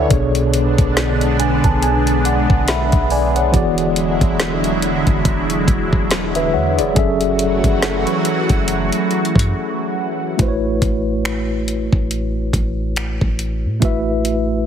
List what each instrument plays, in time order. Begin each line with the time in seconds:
Already playing: tine electric piano A4 B4 C#5 D5 E5 F#5 G#5 A5 B5, downlifter
0.09 808-style bass B1, tine electric piano B2 B3 D4 G#4, analog synth pad D3 G#3 B3 D4, kick, closed hi-hat
0.13 tine electric piano C#5
0.35 closed hi-hat
0.54 closed hi-hat
0.78 808-style bass B1, kick, closed hi-hat
0.97 snare, closed hi-hat
1.21 closed hi-hat
1.40 tine electric piano G#5, closed hi-hat
1.64 808-style bass B1, tine electric piano A5, kick, closed hi-hat
1.82 tine electric piano G#5, closed hi-hat
2.07 closed hi-hat
2.25 tine electric piano F#5, closed hi-hat
2.50 808-style bass B1, kick
2.68 tine electric piano E5 F#5 B5, snare, closed hi-hat
2.92 808-style bass B1, kick, closed hi-hat
3.10 tine electric piano D5 G#5, open hi-hat
3.36 tine electric piano C#5 F#5, closed hi-hat
3.52 808-style bass E1, analog synth pad D3 F#3 E4, tine electric piano E3 B3 F#4 G#4, kick, closed hi-hat
3.56 tine electric piano D5
3.78 closed hi-hat
3.96 closed hi-hat
4.21 808-style bass E1, kick, closed hi-hat
4.40 snare, closed hi-hat
4.64 closed hi-hat
4.82 closed hi-hat
5.07 808-style bass E1, kick, closed hi-hat
5.25 kick, closed hi-hat
5.50 closed hi-hat
5.68 808-style bass E1, kick, closed hi-hat
5.93 kick
6.11 snare, closed hi-hat
6.35 tine electric piano B4 E5, closed hi-hat
6.54 808-style bass E2, tine electric piano C#5 F#5
6.78 808-style bass E1, tine electric piano G#4 D5, closed hi-hat
6.94 808-style bass F#1, analog synth pad E3 F#3 A3 F#4, tine electric piano F#3 C#4 G#4 A4, kick, closed hi-hat
6.99 tine electric piano E5
7.21 closed hi-hat
7.39 closed hi-hat
7.64 808-style bass F#1, kick, closed hi-hat
7.82 snare, closed hi-hat
8.07 closed hi-hat
8.25 closed hi-hat
8.49 808-style bass F#1, kick, closed hi-hat
8.68 closed hi-hat
8.92 closed hi-hat
9.11 closed hi-hat
9.25 closed hi-hat
9.36 808-style bass F#2, kick, closed hi-hat
10.37 808-style bass A1, tine electric piano A3 E4 F#4 B4, kick, closed hi-hat
10.42 tine electric piano C5
10.48 tine electric piano C#5
10.82 808-style bass A1, kick, closed hi-hat
11.25 finger snap, closed hi-hat
11.68 closed hi-hat
11.93 808-style bass A1, kick
12.11 closed hi-hat
12.53 808-style bass A1, kick, closed hi-hat
12.96 finger snap, closed hi-hat
13.21 808-style bass A1, kick
13.39 closed hi-hat
13.65 808-style bass A2
13.80 808-style bass A1, tine electric piano A3 E4 F#4 B4, kick, closed hi-hat
13.85 tine electric piano E5
14.25 closed hi-hat